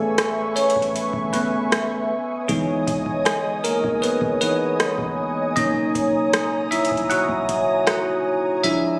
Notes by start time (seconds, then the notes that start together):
Already playing: A1 A3 B3 C#4 G#4 A4 B4 E5 G#5 C#6
0.18 cross-stick, closed hi-hat
0.56 C#4 C#5, closed hi-hat
0.70 closed hi-hat
0.76 A1, kick
0.82 closed hi-hat
0.96 closed hi-hat
1.13 A1, kick
1.33 B3 B4, kick, closed hi-hat
1.72 cross-stick, closed hi-hat
2.11 C#5 D#5 G#5 D#6
2.48 C#2 E3 G#3 B3 D#4 G#4, kick, closed hi-hat
2.87 C#2, kick, closed hi-hat
3.06 kick
3.25 G#3 G#4, cross-stick, closed hi-hat
3.64 A#3 A#4, closed hi-hat
3.84 C#2, kick
4.02 B3 B4, closed hi-hat
4.21 C#2, kick
4.41 E3 B3 D#4 B4, closed hi-hat
4.80 cross-stick, closed hi-hat
4.98 C#2, kick
5.56 B1 C#3 A#3 C#4 D#4 D#5 A#5 D#6, kick, closed hi-hat
5.95 B1, kick, closed hi-hat
6.33 cross-stick, closed hi-hat
6.71 E4 E5, closed hi-hat
6.85 closed hi-hat
6.91 B1, kick
6.97 closed hi-hat
7.10 F#4 F#5, closed hi-hat
7.29 B1, kick
7.49 kick, closed hi-hat
7.87 F#4 F#5, cross-stick, closed hi-hat
8.63 F3 G#3 D4 E4 D5 E5 G#5 E6, kick, closed hi-hat